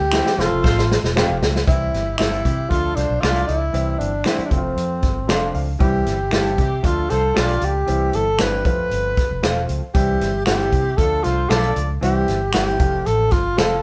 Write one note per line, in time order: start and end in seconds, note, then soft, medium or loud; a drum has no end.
0.00 0.21 D2 medium
0.00 0.41 G4 loud
0.12 0.38 E3 medium
0.12 0.38 G3 medium
0.12 0.37 C4 medium
0.12 0.27 E4 medium
0.12 0.39 E4 medium
0.12 0.27 G4 medium
0.12 0.39 G4 medium
0.12 0.27 C5 loud
0.12 0.27 E5 loud
0.12 finger snap medium
0.12 snare medium
0.26 snare medium
0.37 0.49 F1 loud
0.37 1.00 F3 medium
0.37 1.00 A3 medium
0.37 1.00 C4 medium
0.37 1.00 F4 medium
0.37 1.16 F4 loud
0.37 0.45 G#4 medium
0.37 snare medium
0.45 1.04 A4 medium
0.52 0.62 F1 medium
0.62 0.96 A1 medium
0.62 0.80 F4 medium
0.62 0.79 A4 loud
0.62 0.80 C5 loud
0.62 kick loud
0.62 snare medium
0.78 snare medium
0.92 snare loud
1.03 1.24 E1 medium
1.03 snare medium
1.15 1.51 F3 medium
1.15 1.51 A3 medium
1.15 1.51 C4 medium
1.15 1.30 F4 medium
1.15 1.51 F4 medium
1.15 1.52 G4 medium
1.15 1.30 A4 medium
1.15 1.31 C5 medium
1.15 1.31 F5 loud
1.15 finger snap medium
1.15 snare loud
1.29 1.39 F1 medium
1.42 1.63 C#2 medium
1.42 snare loud
1.56 snare medium
1.66 1.89 C2 medium
1.66 2.02 E3 medium
1.66 2.03 G3 medium
1.66 2.03 C4 medium
1.66 2.16 E4 loud
1.66 2.03 E4 loud
1.66 kick loud
1.66 closed hi-hat medium
1.91 2.14 G1 medium
1.91 2.13 C4 medium
1.91 2.13 E4 medium
1.91 2.13 G4 medium
1.91 snare soft
1.91 closed hi-hat medium
2.18 2.40 G1 medium
2.18 2.54 E3 medium
2.18 2.54 G3 medium
2.18 2.54 C4 medium
2.18 2.39 D4 medium
2.18 2.71 E4 loud
2.18 2.33 E4 medium
2.18 2.55 E4 medium
2.18 2.39 F4 medium
2.18 2.34 G4 medium
2.18 2.39 A4 medium
2.18 2.34 C5 medium
2.18 2.34 E5 medium
2.18 finger snap medium
2.18 snare loud
2.18 closed hi-hat medium
2.33 closed hi-hat soft
2.44 2.66 C3 medium
2.44 2.65 C4 medium
2.44 2.66 E4 medium
2.44 2.65 G4 medium
2.44 kick medium
2.44 closed hi-hat medium
2.69 2.92 D2 medium
2.69 3.05 F3 medium
2.69 3.05 A3 medium
2.69 3.06 D4 medium
2.69 2.91 D4 medium
2.69 2.91 F4 medium
2.69 2.97 F4 loud
2.69 3.06 F4 medium
2.69 2.91 A4 medium
2.69 kick medium
2.69 closed hi-hat medium
2.95 3.07 C2 medium
2.95 3.23 D4 loud
2.95 3.17 F4 medium
2.95 3.17 A4 medium
2.95 3.17 C5 medium
2.95 snare soft
2.95 closed hi-hat medium
3.09 3.20 B1 medium
3.20 3.44 C2 medium
3.20 3.57 F3 medium
3.20 3.57 A3 medium
3.20 3.58 D4 medium
3.20 3.58 E4 medium
3.20 3.58 F4 medium
3.20 3.47 F4 loud
3.20 3.37 F4 medium
3.20 3.58 A4 medium
3.20 3.37 A4 medium
3.20 3.58 D5 loud
3.20 3.37 D5 medium
3.20 3.38 F5 loud
3.20 finger snap medium
3.20 snare loud
3.20 closed hi-hat medium
3.36 closed hi-hat soft
3.48 3.69 C#2 medium
3.48 4.00 E4 loud
3.48 closed hi-hat medium
3.73 3.95 C2 loud
3.73 4.09 E3 medium
3.73 4.09 G3 medium
3.73 4.09 C4 medium
3.73 4.10 E4 loud
3.73 closed hi-hat medium
3.98 4.21 G1 medium
3.98 4.27 D4 medium
3.98 closed hi-hat medium
4.24 4.51 E3 medium
4.24 4.51 G3 medium
4.24 4.50 C4 medium
4.24 4.45 C4 medium
4.24 4.52 D4 medium
4.24 4.40 E4 medium
4.24 4.40 G4 medium
4.24 4.40 C5 medium
4.24 4.41 E5 medium
4.24 finger snap medium
4.24 snare loud
4.24 closed hi-hat medium
4.38 muted fingered electric bass stroke soft
4.38 closed hi-hat soft
4.45 4.52 D4 medium
4.50 4.73 F1 medium
4.50 5.13 F3 medium
4.50 5.13 A3 medium
4.50 5.55 C4 medium
4.50 5.14 C4 medium
4.50 4.58 E4 medium
4.50 kick medium
4.50 closed hi-hat medium
4.57 5.17 F4 medium
4.76 4.98 F2 medium
4.76 closed hi-hat medium
5.02 5.24 G1 medium
5.02 kick medium
5.02 snare soft
5.02 closed hi-hat medium
5.28 5.50 F1 medium
5.28 5.64 F3 medium
5.28 5.64 A3 medium
5.28 5.64 C4 medium
5.28 5.65 D4 medium
5.28 5.43 F4 medium
5.28 5.43 A4 medium
5.28 5.44 C5 medium
5.28 5.44 F5 medium
5.28 5.53 C6 medium
5.28 finger snap medium
5.28 snare loud
5.28 closed hi-hat medium
5.54 5.76 C#2 medium
5.54 5.79 F5 medium
5.54 open hi-hat soft
5.79 6.02 C2 medium
5.79 6.15 E3 medium
5.79 6.16 G3 medium
5.79 6.16 C4 medium
5.79 6.16 E4 medium
5.79 6.28 G4 medium
5.79 kick loud
5.79 closed hi-hat medium
6.06 6.28 G1 medium
6.06 6.27 C4 medium
6.06 6.27 E4 medium
6.06 6.27 G4 medium
6.06 snare soft
6.06 closed hi-hat medium
6.31 6.54 G1 medium
6.31 6.68 E3 medium
6.31 6.68 G3 medium
6.31 6.68 C4 medium
6.31 6.53 D4 medium
6.31 6.46 E4 medium
6.31 6.53 F4 medium
6.31 6.47 G4 medium
6.31 6.87 G4 medium
6.31 6.68 G4 medium
6.31 6.53 A4 medium
6.31 6.47 C5 medium
6.31 6.47 E5 medium
6.31 finger snap medium
6.31 snare loud
6.31 closed hi-hat medium
6.46 closed hi-hat soft
6.58 6.80 C3 medium
6.58 6.79 C4 medium
6.58 6.79 E4 medium
6.58 6.79 G4 loud
6.58 kick medium
6.58 closed hi-hat medium
6.83 7.05 D2 medium
6.83 7.19 F3 medium
6.83 7.19 A3 medium
6.83 7.05 D4 medium
6.83 7.20 D4 medium
6.83 7.05 F4 medium
6.83 7.20 F4 medium
6.83 7.11 F4 medium
6.83 7.05 A4 medium
6.83 kick medium
6.83 closed hi-hat medium
7.09 7.32 C2 medium
7.09 7.30 F4 medium
7.09 7.30 A4 medium
7.09 7.39 A4 medium
7.09 7.30 C5 medium
7.09 snare soft
7.09 closed hi-hat medium
7.34 7.58 B1 medium
7.34 7.71 F3 medium
7.34 7.71 A3 medium
7.34 7.71 D4 medium
7.34 7.72 F4 medium
7.34 7.50 F4 medium
7.34 7.66 F4 medium
7.34 7.71 G4 medium
7.34 7.72 A4 medium
7.34 7.51 A4 medium
7.34 7.72 D5 loud
7.34 7.51 D5 medium
7.34 7.51 F5 medium
7.34 finger snap medium
7.34 snare loud
7.34 closed hi-hat medium
7.49 closed hi-hat soft
7.61 7.83 C#2 medium
7.61 8.16 G4 medium
7.61 closed hi-hat medium
7.87 8.09 C2 medium
7.87 8.23 E3 medium
7.87 8.23 G3 medium
7.87 8.23 C4 medium
7.87 8.24 E4 loud
7.87 closed hi-hat medium
8.13 8.35 G1 medium
8.13 8.43 A4 loud
8.13 closed hi-hat medium
8.39 8.61 G1 medium
8.39 8.65 E3 medium
8.39 8.66 G3 medium
8.39 8.64 C4 medium
8.39 8.66 D4 medium
8.39 8.54 E4 medium
8.39 8.54 G4 medium
8.39 8.66 B4 loud
8.39 8.54 C5 medium
8.39 8.55 E5 medium
8.39 finger snap medium
8.39 snare loud
8.39 closed hi-hat medium
8.65 8.86 F2 medium
8.65 9.28 F3 medium
8.65 9.28 A3 medium
8.65 9.28 C4 medium
8.65 9.28 F4 medium
8.65 9.66 B4 loud
8.65 kick loud
8.65 closed hi-hat medium
8.91 9.13 G1 medium
8.91 closed hi-hat medium
9.17 kick medium
9.17 snare soft
9.17 closed hi-hat medium
9.31 9.41 F1 medium
9.42 9.65 E1 medium
9.42 9.78 F3 medium
9.42 9.79 A3 medium
9.42 9.79 C4 medium
9.42 9.57 F4 medium
9.42 9.79 F4 medium
9.42 9.58 A4 medium
9.42 9.92 C5 medium
9.42 9.58 C5 medium
9.42 9.58 F5 medium
9.42 finger snap medium
9.42 snare loud
9.42 closed hi-hat medium
9.69 9.80 C#2 medium
9.69 closed hi-hat medium
9.94 10.16 C2 medium
9.94 10.30 E3 medium
9.94 10.30 G3 medium
9.94 10.31 C4 medium
9.94 10.31 E4 loud
9.94 10.43 G4 medium
9.94 kick loud
9.94 closed hi-hat medium
10.20 10.42 G1 medium
10.20 10.41 C4 medium
10.20 10.41 E4 medium
10.20 10.41 G4 medium
10.20 snare soft
10.20 closed hi-hat medium
10.46 10.68 G1 medium
10.46 10.82 E3 medium
10.46 10.82 G3 medium
10.46 10.82 C4 medium
10.46 10.68 D4 medium
10.46 10.61 E4 medium
10.46 10.83 E4 medium
10.46 10.67 F4 medium
10.46 10.98 G4 loud
10.46 10.62 G4 medium
10.46 10.68 A4 medium
10.46 10.62 C5 medium
10.46 10.62 E5 medium
10.46 finger snap medium
10.46 snare loud
10.46 closed hi-hat medium
10.60 closed hi-hat soft
10.71 10.94 C3 loud
10.71 10.93 C4 medium
10.71 10.93 E4 medium
10.71 10.93 G4 medium
10.71 kick medium
10.71 closed hi-hat medium
10.97 11.20 D2 medium
10.97 11.34 F3 medium
10.97 11.34 A3 medium
10.97 11.19 D4 medium
10.97 11.35 D4 medium
10.97 11.19 F4 medium
10.97 11.35 F4 medium
10.97 11.25 A4 loud
10.97 11.19 A4 medium
10.97 kick medium
10.97 closed hi-hat medium
11.23 11.46 C2 medium
11.23 11.51 F4 medium
11.23 11.45 F4 medium
11.23 11.45 A4 medium
11.23 11.45 C5 medium
11.23 snare soft
11.23 closed hi-hat medium
11.49 11.72 B1 medium
11.49 11.86 F3 medium
11.49 11.86 A3 medium
11.49 11.86 D4 medium
11.49 11.86 F4 medium
11.49 11.64 F4 medium
11.49 11.86 F4 medium
11.49 11.86 A4 medium
11.49 11.76 A4 medium
11.49 11.64 A4 medium
11.49 11.86 D5 loud
11.49 11.65 D5 medium
11.49 11.65 F5 medium
11.49 finger snap medium
11.49 snare loud
11.49 closed hi-hat medium
11.63 closed hi-hat medium
11.76 11.98 C#2 medium
11.76 closed hi-hat medium
12.01 12.23 C2 loud
12.01 12.37 E3 medium
12.01 12.38 G3 medium
12.01 12.38 C4 medium
12.01 12.38 E4 loud
12.01 12.51 G4 medium
12.01 closed hi-hat medium
12.28 12.50 G1 medium
12.28 snare soft
12.28 closed hi-hat medium
12.53 12.75 G1 medium
12.53 12.80 E3 medium
12.53 12.80 G3 medium
12.53 12.78 C4 medium
12.53 12.68 E4 medium
12.53 12.81 E4 medium
12.53 13.08 G4 loud
12.53 12.69 G4 medium
12.53 12.69 C5 medium
12.53 12.69 E5 medium
12.53 finger snap medium
12.53 snare loud
12.53 closed hi-hat medium
12.67 closed hi-hat soft
12.79 13.01 F1 medium
12.79 13.42 F3 medium
12.79 13.42 A3 medium
12.79 13.42 C4 medium
12.79 13.42 F4 medium
12.79 kick loud
12.79 closed hi-hat medium
13.06 13.28 A1 medium
13.06 13.33 A4 loud
13.06 closed hi-hat medium
13.31 13.53 G1 medium
13.31 13.60 F4 medium
13.31 kick medium
13.31 snare soft
13.31 closed hi-hat medium
13.57 13.79 F1 medium
13.57 13.82 F3 medium
13.57 13.82 A3 medium
13.57 13.82 C4 medium
13.57 13.72 F4 medium
13.57 13.82 F4 medium
13.57 13.82 A4 medium
13.57 13.73 A4 medium
13.57 13.73 C5 medium
13.57 13.73 F5 medium
13.57 finger snap medium
13.57 snare loud
13.57 closed hi-hat medium